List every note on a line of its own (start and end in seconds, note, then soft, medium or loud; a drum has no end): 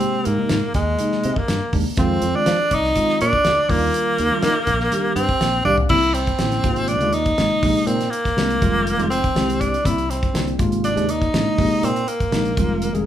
0.00 0.25 C3 medium
0.00 0.26 G#3 medium
0.00 0.26 A#3 medium
0.00 0.27 C4 medium
0.00 0.26 G4 medium
0.00 closed hi-hat medium
0.25 0.37 G#2 medium
0.25 0.74 A#3 medium
0.25 closed hi-hat medium
0.37 0.55 C3 medium
0.37 0.56 G#3 medium
0.37 0.56 A#3 medium
0.37 0.56 D#4 medium
0.49 0.61 G#2 medium
0.49 snare loud
0.49 closed hi-hat medium
0.62 0.68 A#3 soft
0.74 0.95 D#2 medium
0.74 1.39 G#3 medium
0.74 kick medium
0.74 snare soft
0.74 closed hi-hat medium
0.99 1.25 C3 medium
0.99 1.25 G#3 medium
0.99 1.26 A#3 medium
0.99 1.26 D#4 medium
0.99 closed hi-hat medium
1.12 snare soft
1.23 1.35 C3 medium
1.23 closed hi-hat medium
1.36 1.74 A#3 medium
1.36 1.43 G4 soft
1.36 kick medium
1.48 1.59 G2 medium
1.48 snare medium
1.48 closed hi-hat medium
1.73 1.84 D#2 medium
1.73 1.82 C3 medium
1.73 1.82 G#3 medium
1.73 1.83 A#3 medium
1.73 1.83 D4 medium
1.73 kick medium
1.73 open hi-hat medium
1.86 1.91 A#3 soft
1.86 1.92 D4 soft
1.97 2.18 F2 loud
1.97 2.23 D#3 medium
1.97 2.24 G#3 medium
1.97 2.24 C4 medium
1.97 2.37 C4 medium
1.97 2.24 F4 loud
1.97 kick loud
1.97 closed hi-hat medium
2.22 2.33 F2 medium
2.22 closed hi-hat medium
2.34 2.51 D#3 medium
2.34 2.52 G#3 medium
2.34 2.52 C4 medium
2.34 2.75 D4 loud
2.34 2.52 F4 medium
2.46 2.57 F3 medium
2.46 snare loud
2.46 closed hi-hat medium
2.59 2.65 C4 soft
2.59 2.66 G#4 soft
2.71 2.92 C2 medium
2.71 3.21 D#4 loud
2.71 kick medium
2.71 closed hi-hat medium
2.84 snare soft
2.95 3.21 D#3 medium
2.95 3.22 G#3 medium
2.95 3.22 C4 medium
2.95 3.22 F4 medium
2.95 kick medium
2.95 closed hi-hat medium
3.09 snare soft
3.21 3.32 A#2 medium
3.21 3.71 D4 loud
3.21 snare soft
3.21 closed hi-hat medium
3.33 3.38 C4 soft
3.33 3.39 G4 soft
3.33 kick medium
3.45 3.56 D2 medium
3.45 snare loud
3.45 closed hi-hat medium
3.68 3.90 D#2 medium
3.68 4.18 D#3 medium
3.68 4.18 G3 medium
3.68 5.15 A#3 medium
3.68 4.18 D4 medium
3.68 4.19 F4 medium
3.68 kick medium
3.68 open hi-hat medium
3.94 closed hi-hat medium
4.18 4.29 D#2 medium
4.18 closed hi-hat medium
4.31 4.48 D#3 medium
4.31 4.48 G3 medium
4.31 4.49 D4 medium
4.31 4.49 F4 medium
4.42 4.54 D#3 medium
4.42 snare loud
4.42 closed hi-hat medium
4.56 4.62 D4 soft
4.56 4.62 G4 soft
4.67 4.88 A#1 medium
4.67 kick medium
4.67 snare soft
4.67 closed hi-hat medium
4.80 snare soft
4.92 5.18 D#3 medium
4.92 5.18 G3 medium
4.92 5.18 D4 medium
4.92 5.19 G4 medium
4.92 closed hi-hat medium
5.15 5.27 G2 medium
5.15 5.62 C4 loud
5.15 closed hi-hat medium
5.28 5.35 D4 soft
5.28 5.36 G4 soft
5.28 kick medium
5.41 5.63 A#1 medium
5.41 5.64 G5 medium
5.41 snare loud
5.41 closed hi-hat medium
5.65 5.88 C2 medium
5.65 5.74 D#3 medium
5.65 5.74 G3 medium
5.65 5.76 D4 medium
5.65 5.75 D4 medium
5.65 5.75 G4 loud
5.65 5.89 F5 medium
5.65 high tom medium
5.77 5.84 D4 soft
5.77 5.85 G4 soft
5.77 floor tom medium
5.89 6.30 C2 medium
5.89 5.99 D3 medium
5.89 5.99 A#3 medium
5.89 5.99 C4 medium
5.89 6.15 E4 medium
5.89 6.00 E4 medium
5.89 kick loud
5.89 crash medium
6.02 6.09 C4 soft
6.02 closed hi-hat soft
6.14 6.90 C4 medium
6.14 closed hi-hat medium
6.27 kick medium
6.27 closed hi-hat soft
6.39 6.60 A1 medium
6.39 6.57 D3 medium
6.39 6.57 A#3 medium
6.39 6.58 C4 medium
6.39 6.58 E4 medium
6.39 snare loud
6.39 closed hi-hat medium
6.52 snare soft
6.52 closed hi-hat soft
6.64 7.02 G#1 medium
6.64 6.94 C3 medium
6.64 6.94 G#3 medium
6.64 6.94 A#3 medium
6.64 6.95 F4 medium
6.64 kick loud
6.64 closed hi-hat medium
6.76 closed hi-hat soft
6.88 7.15 D4 medium
6.88 closed hi-hat medium
7.01 7.32 D#2 medium
7.01 7.10 C3 medium
7.01 7.10 G#3 medium
7.01 7.10 A#3 medium
7.01 7.10 F4 medium
7.01 closed hi-hat soft
7.13 7.20 A#3 soft
7.13 7.88 D#4 loud
7.13 7.21 F4 soft
7.13 closed hi-hat medium
7.26 7.32 A#3 soft
7.26 7.33 G#4 soft
7.26 kick medium
7.26 closed hi-hat soft
7.38 7.49 G#1 medium
7.38 7.62 C3 medium
7.38 7.62 G#3 medium
7.38 7.63 A#3 medium
7.38 7.63 D#4 medium
7.38 snare loud
7.38 closed hi-hat medium
7.63 7.73 A#1 medium
7.63 7.93 C3 medium
7.63 7.93 G#3 medium
7.63 7.93 A#3 medium
7.63 7.93 D#4 medium
7.63 kick loud
7.63 open hi-hat medium
7.87 8.07 A#2 medium
7.87 8.12 C4 medium
7.87 closed hi-hat medium
8.00 8.06 A#3 soft
8.00 snare soft
8.00 closed hi-hat soft
8.10 9.09 A#3 medium
8.10 closed hi-hat medium
8.25 muted fretless electric bass stroke soft
8.25 kick medium
8.25 snare soft
8.25 closed hi-hat soft
8.36 8.57 C2 medium
8.36 8.54 C3 medium
8.36 8.54 G#3 medium
8.36 8.55 A#3 medium
8.36 8.55 D4 medium
8.36 snare medium
8.36 closed hi-hat medium
8.50 closed hi-hat soft
8.60 8.93 F1 medium
8.60 8.91 D#3 medium
8.60 8.91 G3 medium
8.60 8.91 G#3 medium
8.60 8.92 F4 medium
8.60 kick loud
8.60 closed hi-hat medium
8.87 closed hi-hat medium
8.97 9.29 F1 medium
8.97 9.07 D#3 medium
8.97 9.07 G3 medium
8.97 9.07 G#3 medium
8.97 9.08 F4 loud
8.97 closed hi-hat soft
9.10 9.17 G#3 soft
9.10 9.62 C4 medium
9.10 9.17 F4 soft
9.10 closed hi-hat medium
9.24 kick medium
9.24 closed hi-hat soft
9.35 9.77 C2 medium
9.35 9.70 D#3 medium
9.35 9.70 G3 medium
9.35 9.71 G#3 medium
9.35 9.71 G4 medium
9.35 snare loud
9.35 closed hi-hat medium
9.50 closed hi-hat soft
9.61 9.87 D4 medium
9.61 kick medium
9.61 closed hi-hat medium
9.74 closed hi-hat soft
9.84 10.26 C2 medium
9.84 9.94 D3 medium
9.84 9.94 A#3 medium
9.84 9.94 C4 medium
9.84 10.12 E4 medium
9.84 9.94 E4 loud
9.84 kick loud
9.84 closed hi-hat medium
9.98 closed hi-hat soft
10.10 10.57 C4 medium
10.10 snare soft
10.10 closed hi-hat medium
10.23 kick medium
10.23 closed hi-hat soft
10.33 10.55 C2 medium
10.33 10.51 D3 medium
10.33 10.52 A#3 medium
10.33 10.52 C4 medium
10.33 10.52 D4 medium
10.33 snare loud
10.33 closed hi-hat medium
10.47 closed hi-hat soft
10.58 10.98 G#1 medium
10.58 10.88 C3 medium
10.58 10.89 G#3 medium
10.58 10.89 A#3 medium
10.58 10.89 F4 medium
10.58 kick medium
10.58 closed hi-hat medium
10.72 closed hi-hat soft
10.84 11.11 D4 medium
10.84 closed hi-hat medium
10.96 11.27 D#2 medium
10.96 11.05 C3 medium
10.96 11.05 G#3 medium
10.96 11.05 A#3 medium
10.96 11.05 D4 loud
10.96 closed hi-hat soft
11.09 11.15 A#3 soft
11.09 11.86 D#4 medium
11.09 11.16 F4 soft
11.09 closed hi-hat medium
11.22 11.28 A#3 soft
11.22 11.29 F4 soft
11.22 kick medium
11.22 closed hi-hat soft
11.34 11.44 A1 medium
11.34 11.57 C3 medium
11.34 11.57 G#3 medium
11.34 11.58 A#3 medium
11.34 11.59 D4 medium
11.34 snare loud
11.34 closed hi-hat medium
11.58 11.69 A#1 medium
11.58 11.88 C3 medium
11.58 11.88 G#3 medium
11.58 11.89 A#3 medium
11.58 11.89 D#4 medium
11.58 kick medium
11.58 open hi-hat medium
11.83 12.04 A#2 medium
11.83 12.10 C4 medium
11.83 closed hi-hat medium
11.96 12.02 F4 soft
11.96 closed hi-hat soft
12.08 13.06 A#3 medium
12.08 closed hi-hat medium
12.20 muted fretless electric bass stroke soft
12.20 kick medium
12.20 closed hi-hat soft
12.31 12.53 A#1 medium
12.31 12.50 C3 medium
12.31 12.50 G#3 medium
12.31 12.50 A#3 medium
12.31 12.50 D#4 medium
12.31 snare loud
12.31 closed hi-hat medium
12.45 closed hi-hat soft
12.57 12.88 F1 medium
12.57 12.87 D#3 medium
12.57 12.87 G3 medium
12.57 12.88 G#3 medium
12.57 12.88 F4 medium
12.57 kick loud
12.57 closed hi-hat medium
12.82 closed hi-hat medium
12.93 13.06 F1 medium
12.93 13.02 D#3 medium
12.93 13.03 G3 medium
12.93 13.03 G#3 medium
12.93 13.03 G#4 medium
12.93 closed hi-hat soft